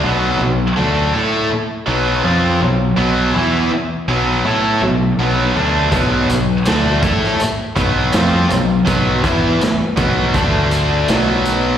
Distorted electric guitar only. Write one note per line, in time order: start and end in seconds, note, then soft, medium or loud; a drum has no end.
0.04 0.39 B2 medium
0.04 0.40 F#3 medium
0.04 0.40 B3 loud
0.41 0.70 B2 medium
0.41 0.70 F#3 medium
0.76 1.12 D3 medium
0.76 1.12 A3 medium
0.76 1.13 D4 medium
1.13 1.49 A3 medium
1.13 1.49 E4 medium
1.13 1.49 A4 medium
1.50 muted distorted electric guitar stroke medium
1.86 2.22 B2 medium
1.86 2.23 F#3 medium
1.86 2.23 B3 loud
2.24 2.60 F3 medium
2.24 2.60 C4 medium
2.24 2.60 F4 medium
2.61 2.90 B2 medium
2.61 2.91 F#3 medium
2.97 3.33 B2 medium
2.97 3.33 F#3 medium
2.97 3.33 B3 loud
3.34 3.70 E3 medium
3.34 3.70 B3 medium
3.34 3.70 E4 medium
3.71 muted distorted electric guitar stroke medium
4.08 4.44 B2 medium
4.08 4.44 F#3 medium
4.08 4.44 B3 medium
4.45 4.80 A3 medium
4.45 4.81 E4 medium
4.45 4.81 A4 medium
4.82 5.11 B2 medium
4.82 5.11 F#3 medium
5.19 5.54 B2 medium
5.19 5.55 F#3 medium
5.19 5.55 B3 medium
5.55 5.91 D3 medium
5.55 5.91 A3 medium
5.55 5.91 D4 medium
5.92 6.28 B2 medium
5.92 6.28 F#3 medium
5.92 6.28 B3 loud
6.30 6.59 B2 soft
6.30 6.59 F#3 medium
6.66 7.02 D3 medium
6.66 7.01 A3 medium
6.66 7.02 D4 medium
7.03 7.38 A3 medium
7.03 7.38 E4 medium
7.03 7.39 A4 medium
7.40 muted distorted electric guitar stroke medium
7.76 8.12 B2 medium
7.76 8.12 F#3 medium
7.76 8.12 B3 loud
8.13 8.49 F3 medium
8.13 8.49 C4 medium
8.13 8.50 F4 loud
8.50 8.79 B2 medium
8.50 8.80 F#3 medium
8.86 9.22 B2 medium
8.86 9.22 F#3 medium
8.86 9.22 B3 medium
9.23 9.59 E3 medium
9.23 9.60 B3 medium
9.23 9.60 E4 medium
9.61 muted distorted electric guitar stroke soft
9.97 10.33 B2 medium
9.97 10.34 F#3 medium
9.97 10.34 B3 medium
10.34 11.07 D3 medium
10.34 11.08 A3 medium
10.34 11.08 D4 loud
11.09 11.78 B2 medium
11.09 11.78 F#3 medium
11.09 11.78 B3 medium